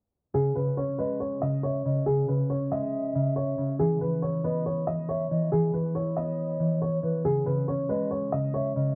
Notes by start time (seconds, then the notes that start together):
0.34 C#3 G#4
0.55 C#3 B4
0.77 C#4 C#5
0.98 G#3 B4 D#5
1.20 C#5
1.42 C#3 D#5
1.63 C#5 E5
1.85 C#3 D#5
2.06 C#3 G#4
2.28 C#3 B4
2.50 C#4 C#5
2.71 G#3 D#5 E5
3.15 C#3
3.36 C#5
3.58 C#3
3.79 E3 G#4
4.01 E3 B4
4.22 E4 C#5
4.44 B3 B4 D#5
4.66 C#5
4.87 E3 D#5
5.09 C#5 E5
5.30 E3 D#5
5.52 E3 G#4
5.73 E3 B4
5.95 E4 C#5
6.17 B3 C#5 D#5
6.59 E3
6.82 C#5
7.03 E3 B4
7.25 C#3 G#4
7.46 C#3 B4
7.68 C#4 C#5
7.89 G#3 B4 D#5
8.11 C#5
8.32 C#3 D#5
8.54 C#5 E5
8.76 C#3 D#5